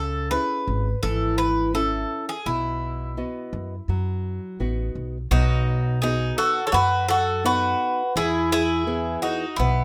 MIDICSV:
0, 0, Header, 1, 5, 480
1, 0, Start_track
1, 0, Tempo, 712589
1, 1654, Time_signature, 4, 2, 24, 8
1, 6630, End_track
2, 0, Start_track
2, 0, Title_t, "Bouzouki"
2, 0, Program_c, 0, 25
2, 0, Note_on_c, 0, 69, 86
2, 192, Note_off_c, 0, 69, 0
2, 208, Note_on_c, 0, 71, 92
2, 689, Note_off_c, 0, 71, 0
2, 692, Note_on_c, 0, 69, 90
2, 926, Note_off_c, 0, 69, 0
2, 929, Note_on_c, 0, 71, 95
2, 1154, Note_off_c, 0, 71, 0
2, 1177, Note_on_c, 0, 69, 87
2, 1510, Note_off_c, 0, 69, 0
2, 1542, Note_on_c, 0, 68, 77
2, 1658, Note_on_c, 0, 64, 80
2, 1661, Note_off_c, 0, 68, 0
2, 3071, Note_off_c, 0, 64, 0
2, 3578, Note_on_c, 0, 66, 90
2, 4030, Note_off_c, 0, 66, 0
2, 4053, Note_on_c, 0, 68, 79
2, 4277, Note_off_c, 0, 68, 0
2, 4297, Note_on_c, 0, 69, 88
2, 4476, Note_off_c, 0, 69, 0
2, 4492, Note_on_c, 0, 73, 65
2, 4537, Note_off_c, 0, 73, 0
2, 4542, Note_on_c, 0, 71, 95
2, 4770, Note_off_c, 0, 71, 0
2, 4773, Note_on_c, 0, 69, 92
2, 5021, Note_off_c, 0, 69, 0
2, 5026, Note_on_c, 0, 71, 88
2, 5498, Note_off_c, 0, 71, 0
2, 5501, Note_on_c, 0, 68, 95
2, 5734, Note_off_c, 0, 68, 0
2, 5742, Note_on_c, 0, 68, 90
2, 6191, Note_off_c, 0, 68, 0
2, 6212, Note_on_c, 0, 66, 74
2, 6436, Note_off_c, 0, 66, 0
2, 6442, Note_on_c, 0, 64, 82
2, 6630, Note_off_c, 0, 64, 0
2, 6630, End_track
3, 0, Start_track
3, 0, Title_t, "Bouzouki"
3, 0, Program_c, 1, 25
3, 3582, Note_on_c, 1, 63, 72
3, 4032, Note_off_c, 1, 63, 0
3, 4064, Note_on_c, 1, 63, 70
3, 4283, Note_off_c, 1, 63, 0
3, 4299, Note_on_c, 1, 66, 71
3, 4477, Note_off_c, 1, 66, 0
3, 4491, Note_on_c, 1, 69, 61
3, 4525, Note_off_c, 1, 69, 0
3, 4528, Note_on_c, 1, 66, 80
3, 4754, Note_off_c, 1, 66, 0
3, 4785, Note_on_c, 1, 66, 75
3, 5004, Note_off_c, 1, 66, 0
3, 5022, Note_on_c, 1, 66, 81
3, 5471, Note_off_c, 1, 66, 0
3, 5502, Note_on_c, 1, 64, 77
3, 5721, Note_off_c, 1, 64, 0
3, 5741, Note_on_c, 1, 64, 74
3, 6190, Note_off_c, 1, 64, 0
3, 6215, Note_on_c, 1, 63, 62
3, 6437, Note_off_c, 1, 63, 0
3, 6463, Note_on_c, 1, 59, 63
3, 6630, Note_off_c, 1, 59, 0
3, 6630, End_track
4, 0, Start_track
4, 0, Title_t, "Nylon-string guitar"
4, 0, Program_c, 2, 24
4, 0, Note_on_c, 2, 49, 58
4, 197, Note_off_c, 2, 49, 0
4, 208, Note_on_c, 2, 61, 46
4, 210, Note_on_c, 2, 64, 42
4, 214, Note_on_c, 2, 68, 54
4, 594, Note_off_c, 2, 61, 0
4, 596, Note_off_c, 2, 64, 0
4, 597, Note_off_c, 2, 68, 0
4, 691, Note_on_c, 2, 52, 67
4, 1158, Note_off_c, 2, 52, 0
4, 1170, Note_on_c, 2, 61, 47
4, 1177, Note_on_c, 2, 64, 45
4, 1556, Note_off_c, 2, 61, 0
4, 1560, Note_off_c, 2, 64, 0
4, 1655, Note_on_c, 2, 47, 62
4, 2121, Note_off_c, 2, 47, 0
4, 2137, Note_on_c, 2, 59, 45
4, 2139, Note_on_c, 2, 75, 44
4, 2141, Note_on_c, 2, 66, 51
4, 2520, Note_off_c, 2, 59, 0
4, 2520, Note_off_c, 2, 75, 0
4, 2523, Note_off_c, 2, 66, 0
4, 2622, Note_on_c, 2, 54, 64
4, 3084, Note_off_c, 2, 54, 0
4, 3097, Note_on_c, 2, 59, 46
4, 3101, Note_on_c, 2, 63, 39
4, 3102, Note_on_c, 2, 66, 50
4, 3481, Note_off_c, 2, 59, 0
4, 3482, Note_off_c, 2, 63, 0
4, 3483, Note_off_c, 2, 66, 0
4, 3581, Note_on_c, 2, 47, 64
4, 4044, Note_off_c, 2, 47, 0
4, 4061, Note_on_c, 2, 59, 47
4, 4064, Note_on_c, 2, 63, 44
4, 4067, Note_on_c, 2, 66, 50
4, 4443, Note_off_c, 2, 59, 0
4, 4445, Note_off_c, 2, 63, 0
4, 4446, Note_off_c, 2, 66, 0
4, 4540, Note_on_c, 2, 54, 66
4, 5003, Note_off_c, 2, 54, 0
4, 5012, Note_on_c, 2, 59, 51
4, 5015, Note_on_c, 2, 63, 41
4, 5019, Note_on_c, 2, 66, 51
4, 5397, Note_off_c, 2, 59, 0
4, 5399, Note_off_c, 2, 63, 0
4, 5400, Note_off_c, 2, 66, 0
4, 5494, Note_on_c, 2, 52, 62
4, 5959, Note_off_c, 2, 52, 0
4, 5973, Note_on_c, 2, 59, 50
4, 5976, Note_on_c, 2, 52, 46
4, 5980, Note_on_c, 2, 68, 50
4, 6357, Note_off_c, 2, 59, 0
4, 6359, Note_off_c, 2, 52, 0
4, 6361, Note_off_c, 2, 68, 0
4, 6454, Note_on_c, 2, 47, 66
4, 6630, Note_off_c, 2, 47, 0
4, 6630, End_track
5, 0, Start_track
5, 0, Title_t, "Upright bass"
5, 0, Program_c, 3, 32
5, 0, Note_on_c, 3, 37, 88
5, 234, Note_off_c, 3, 37, 0
5, 455, Note_on_c, 3, 32, 98
5, 622, Note_off_c, 3, 32, 0
5, 696, Note_on_c, 3, 32, 87
5, 1367, Note_off_c, 3, 32, 0
5, 1657, Note_on_c, 3, 35, 76
5, 2160, Note_off_c, 3, 35, 0
5, 2377, Note_on_c, 3, 42, 94
5, 2544, Note_off_c, 3, 42, 0
5, 2615, Note_on_c, 3, 42, 80
5, 2951, Note_off_c, 3, 42, 0
5, 3097, Note_on_c, 3, 33, 68
5, 3312, Note_off_c, 3, 33, 0
5, 3337, Note_on_c, 3, 35, 74
5, 3552, Note_off_c, 3, 35, 0
5, 3576, Note_on_c, 3, 35, 97
5, 4248, Note_off_c, 3, 35, 0
5, 4533, Note_on_c, 3, 42, 98
5, 5205, Note_off_c, 3, 42, 0
5, 5495, Note_on_c, 3, 40, 99
5, 6166, Note_off_c, 3, 40, 0
5, 6458, Note_on_c, 3, 35, 97
5, 6630, Note_off_c, 3, 35, 0
5, 6630, End_track
0, 0, End_of_file